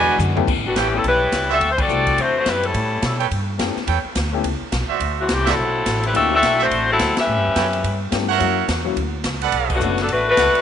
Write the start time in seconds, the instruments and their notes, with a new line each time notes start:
Already playing: upright bass E2, trombone section B2 D3 E3 G#3 D4 F#4, trumpet section F#4 B4 D5 G#5
0.18 upright bass F#2, hi-hat pedal, high tom
0.36 grand piano A3 B3 C#4 E4 G4, floor tom
0.48 upright bass C#2, kick, crash
0.56 upright bass A1
0.65 upright bass G1, saxophone section D3 G3 B3 F#4
0.76 upright bass A1, saxophone section E3 B3 C#4 G4, trumpet section A4 B4 C#5 G5, kick, snare, hi-hat pedal, ride
0.92 saxophone section G3 C#4 E4, grand piano A3 B3 C#4 E4 G4
0.96 saxophone section A4
1.04 upright bass B1, saxophone section G3 C#4 E4 B4, kick, ride
1.32 upright bass C#2, kick, snare, hi-hat pedal, ride
1.50 saxophone section C4 F#4 A4 E5, trumpet section F#4 C5 D5 E5
1.60 upright bass D2, kick, ride
1.71 saxophone section C5
1.78 saxophone section C4 F#4 A4 D5, kick, crash
1.88 upright bass C2, grand piano A3 C4 D4 E4 F#4, hi-hat pedal
2.07 kick, ride
2.17 upright bass E2, saxophone section A3 E4 F#4 C5, ride
2.38 saxophone section A3 E4 F#4 C5
2.46 upright bass F#2, saxophone section G3 C4 E4 B4, kick, snare, hi-hat pedal, ride
2.63 saxophone section G3 C#4 E4 A4, ride
2.74 upright bass A2, kick, ride
3.02 upright bass B2, kick, snare, hi-hat pedal, ride
3.20 trumpet section A4 B4 C#5 G5, ride
3.31 upright bass G2, kick, ride
3.58 upright bass F#2, grand piano A3 B3 C#4 E4 G4, kick, snare, hi-hat pedal, ride
3.76 muted upright bass stroke, snare
3.87 upright bass E2, trumpet section A4 B4 C#5 G5, kick, ride
4.04 muted upright bass stroke
4.15 upright bass D2, kick, snare, hi-hat pedal, ride
4.33 grand piano A3 B3 C#4 E4 G4
4.43 upright bass C#2, kick, ride
4.61 muted upright bass stroke
4.72 upright bass B1, kick, snare, hi-hat pedal, ride
4.89 trumpet section F#4 C5 D5 E5, muted upright bass stroke
5.00 upright bass D2, kick, ride
5.19 saxophone section E3 A3 C4 F#4
5.29 upright bass C2, saxophone section E3 A3 C4 G4, kick, snare, hi-hat pedal, ride
5.46 saxophone section F#3 C4 E4 A4, trumpet section F#4 C5 D5 E5, snare, ride
5.57 upright bass B1
5.86 upright bass A1, kick, snare, hi-hat pedal, ride
6.03 saxophone section G3 C4 E4 B4, ride
6.14 upright bass D2, grand piano A#3 C#4 D#4 F4 G4, saxophone section C4 F#4 A4 E5, kick, ride
6.30 grand piano A3 C4 D4 E4 F#4
6.35 saxophone section C4 F#4 A4 E5
6.43 upright bass B1, kick, snare, hi-hat pedal, ride
6.59 saxophone section A3 E4 F#4 C5, trumpet section F#4 C5 D5 E5
6.71 upright bass A1, kick, ride
6.90 saxophone section F#3 C4 E4 A4
6.99 upright bass D2, kick, snare, hi-hat pedal, ride
7.17 saxophone section C#4 G4 B4 E5, muted upright bass stroke, snare, ride
7.27 upright bass A2
7.37 upright bass G2
7.47 upright bass E2
7.55 upright bass F#2, trumpet section A4 B4 C#5 G5, kick, snare, hi-hat pedal, ride
7.73 ride
7.84 upright bass G2, kick, ride
8.11 upright bass G2, grand piano A3 B3 C#4 E4 G4, kick, snare, hi-hat pedal, ride
8.29 trumpet section A#4 C#5 E5 F#5
8.39 upright bass F#2, grand piano F#3 A#3 C#4 E4 F#4, kick, ride
8.68 upright bass E2, kick, snare, hi-hat pedal, ride
8.85 grand piano F#3 A#3 C#4 E4 F#4
8.96 upright bass D2, kick, ride
9.24 upright bass C#2, kick, snare, hi-hat pedal, ride
9.41 trumpet section A4 B4 D5 F#5, ride
9.52 upright bass B1, kick, ride
9.70 kick, crash
9.74 saxophone section D3 A3 B3 F#4
9.79 upright bass F#1, grand piano A3 B3 C#4 D4 F#4, hi-hat pedal
9.98 saxophone section F#3 B3 D4 A4, snare, ride
10.09 upright bass A1, saxophone section A3 D4 F#4 B4, kick, ride
10.28 saxophone section A3 D4 F#4 B4
10.37 upright bass C#2, trumpet section A4 B4 D5 F#5, kick, snare, hi-hat pedal, ride
10.54 muted upright bass stroke, ride